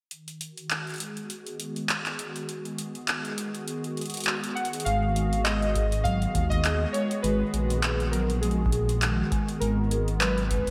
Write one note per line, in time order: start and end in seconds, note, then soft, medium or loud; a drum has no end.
0.11 10.70 D#3 medium
0.11 closed hi-hat medium
0.28 closed hi-hat soft
0.41 closed hi-hat medium
0.51 10.70 F#4 medium
0.57 10.70 G#4 medium
0.57 closed hi-hat soft
0.65 10.70 G#3 medium
0.71 clap loud
0.71 closed hi-hat medium
0.87 closed hi-hat soft
0.89 closed hi-hat soft
0.94 closed hi-hat soft
0.96 closed hi-hat soft
0.98 closed hi-hat soft
1.00 closed hi-hat medium
1.17 10.70 B3 medium
1.17 closed hi-hat soft
1.30 closed hi-hat medium
1.47 closed hi-hat soft
1.60 closed hi-hat medium
1.76 closed hi-hat soft
1.89 clap loud
1.89 closed hi-hat medium
2.06 clap medium
2.06 closed hi-hat soft
2.19 closed hi-hat medium
2.36 closed hi-hat soft
2.49 closed hi-hat medium
2.65 closed hi-hat soft
2.78 closed hi-hat medium
2.95 closed hi-hat soft
3.08 clap loud
3.08 closed hi-hat medium
3.25 closed hi-hat soft
3.38 closed hi-hat medium
3.55 closed hi-hat soft
3.68 closed hi-hat medium
3.84 closed hi-hat soft
3.97 closed hi-hat soft
4.01 closed hi-hat soft
4.06 closed hi-hat medium
4.10 closed hi-hat medium
4.14 closed hi-hat medium
4.17 closed hi-hat medium
4.20 closed hi-hat medium
4.24 clap loud
4.24 closed hi-hat medium
4.44 closed hi-hat medium
4.55 4.69 F#5 loud
4.55 closed hi-hat soft
4.65 closed hi-hat medium
4.73 closed hi-hat medium
4.80 closed hi-hat medium
4.85 6.27 G#1 loud
4.85 5.02 G#3 medium
4.85 5.41 F5 loud
4.85 closed hi-hat medium
5.16 5.31 G#3 medium
5.16 closed hi-hat medium
5.33 closed hi-hat medium
5.44 5.61 G#3 medium
5.44 6.06 D#5 loud
5.44 clap loud
5.44 closed hi-hat medium
5.62 closed hi-hat soft
5.75 5.82 G#4 medium
5.75 kick medium
5.75 closed hi-hat medium
5.92 closed hi-hat medium
6.04 6.15 F#3 loud
6.04 6.47 F5 loud
6.04 kick loud
6.04 closed hi-hat medium
6.22 closed hi-hat soft
6.35 6.86 D#2 medium
6.35 6.41 G#3 medium
6.35 kick loud
6.35 closed hi-hat medium
6.50 6.95 D#5 loud
6.50 kick loud
6.50 closed hi-hat medium
6.65 6.75 G#4 medium
6.65 clap loud
6.65 closed hi-hat medium
6.93 7.09 G#3 medium
6.93 7.24 C#5 medium
6.93 closed hi-hat medium
7.11 closed hi-hat medium
7.22 7.43 G#1 loud
7.22 7.39 G#3 medium
7.22 8.08 B4 medium
7.22 closed hi-hat medium
7.54 9.24 A#1 loud
7.54 7.69 G#3 medium
7.54 closed hi-hat medium
7.70 closed hi-hat medium
7.83 7.89 G#4 medium
7.83 clap loud
7.83 closed hi-hat medium
8.00 closed hi-hat soft
8.11 8.23 F#3 loud
8.11 8.25 A#4 medium
8.11 closed hi-hat medium
8.30 closed hi-hat medium
8.41 8.49 G#3 medium
8.41 9.27 G#4 medium
8.41 closed hi-hat medium
8.51 closed hi-hat soft
8.66 kick loud
8.72 8.83 G#4 medium
8.72 closed hi-hat medium
8.89 closed hi-hat medium
9.02 9.17 G#3 medium
9.02 clap loud
9.02 closed hi-hat medium
9.32 9.47 G#3 medium
9.32 kick loud
9.32 closed hi-hat medium
9.48 closed hi-hat soft
9.60 10.70 G#1 loud
9.60 9.77 G#3 medium
9.60 10.22 A#4 medium
9.60 closed hi-hat medium
9.91 9.97 G#4 medium
9.91 closed hi-hat medium
10.08 closed hi-hat medium
10.19 10.31 F#3 loud
10.19 10.70 B4 medium
10.19 clap loud
10.19 closed hi-hat medium
10.38 closed hi-hat soft
10.51 10.57 G#3 medium
10.51 kick medium
10.51 closed hi-hat medium
10.55 kick medium
10.59 kick medium
10.63 kick soft
10.67 kick soft
10.67 closed hi-hat medium